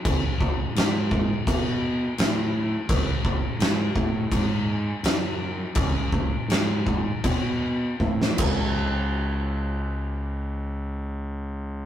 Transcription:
0.05 C#2, kick, crash
0.41 kick
0.75 G#2, snare, crash
1.11 kick
1.47 B2, kick, crash
2.18 A2, snare, crash
2.89 C#2, kick, crash
3.25 kick
3.59 G#2, snare, crash
3.96 A2, kick
4.32 G#2, kick, crash
5.03 F#2, snare, crash
5.75 C#2, kick, crash
6.12 kick
6.48 G#2, snare, crash
6.87 kick
7.24 B2, kick, crash
8.00 A2, kick
8.21 snare
8.38 C#2, kick, crash

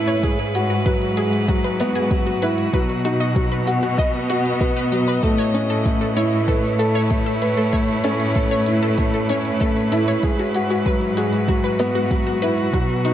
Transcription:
Already playing: A2 A3 C#4 E4 B4 C#5
0.08 C#5, closed hi-hat
0.23 G#2 G#3 G#4, kick, closed hi-hat
0.39 G#4, closed hi-hat
0.55 F#4, closed hi-hat
0.70 F#4, closed hi-hat
0.84 F#3 F#4 B4, kick, closed hi-hat
1.02 closed hi-hat
1.17 G#4, closed hi-hat
1.33 closed hi-hat
1.48 F#3 F#4, kick, closed hi-hat
1.64 B4, closed hi-hat
1.80 B3, closed hi-hat
1.95 G#4, closed hi-hat
2.11 F#3, kick, closed hi-hat
2.26 F#4, closed hi-hat
2.42 E4 B4, closed hi-hat
2.58 closed hi-hat
2.73 B2 F#3 B4, kick, closed hi-hat
2.89 closed hi-hat
3.05 D#4 F#4, closed hi-hat
3.20 D#5, closed hi-hat
3.36 F#3 B3, kick, closed hi-hat
3.52 B4, closed hi-hat
3.67 F#4, closed hi-hat
3.83 F#4 D#5, closed hi-hat
3.98 D#5, kick, closed hi-hat
4.14 closed hi-hat
4.30 F#4, closed hi-hat
4.45 closed hi-hat
4.61 B3 F#4, kick, closed hi-hat
4.77 B4, closed hi-hat
4.92 F#3, closed hi-hat
5.08 B4, closed hi-hat
5.23 A2 A3 A4, kick, closed hi-hat
5.38 C#5, closed hi-hat
5.54 C#4, closed hi-hat
5.70 E4 A4, closed hi-hat
5.76 B4 C#5
5.85 A3, kick, closed hi-hat
6.01 A4, closed hi-hat
6.16 E4 C#5, closed hi-hat
6.33 closed hi-hat
6.48 A4 B4, kick, closed hi-hat
6.64 closed hi-hat
6.79 A4, closed hi-hat
6.95 C#5, closed hi-hat
7.10 A3, kick, closed hi-hat
7.26 A4, closed hi-hat
7.42 B4, closed hi-hat
7.57 A4, closed hi-hat
7.73 A3 C#5, kick, closed hi-hat
7.88 closed hi-hat
8.04 C#4 A4, closed hi-hat
8.20 closed hi-hat
8.35 A3 A4, kick, closed hi-hat
8.51 C#5, closed hi-hat
8.66 E4, closed hi-hat
8.82 A4, closed hi-hat
8.98 A3, kick, closed hi-hat
9.14 A4, closed hi-hat
9.29 C#4 C#5, closed hi-hat
9.45 closed hi-hat
9.60 A3 A4, kick, closed hi-hat
9.76 closed hi-hat
9.92 E4 A4, closed hi-hat
10.08 C#5, closed hi-hat
10.23 G#2 G#3 G#4, kick, closed hi-hat
10.39 F#4, closed hi-hat
10.54 F#4, closed hi-hat
10.70 F#4, closed hi-hat
10.74 F#4
10.86 F#3 B4, kick, closed hi-hat
11.01 closed hi-hat
11.17 F#4 G#4, closed hi-hat
11.33 closed hi-hat
11.48 F#3 F#4, kick, closed hi-hat
11.64 B4, closed hi-hat
11.79 B3, closed hi-hat
11.95 F#4, closed hi-hat
12.11 F#3, kick, closed hi-hat
12.27 F#4, closed hi-hat
12.42 E4 B4, closed hi-hat
12.58 closed hi-hat
12.73 B2 F#3 F#4, kick, closed hi-hat
12.89 closed hi-hat
13.05 B3 D#4 F#4, closed hi-hat

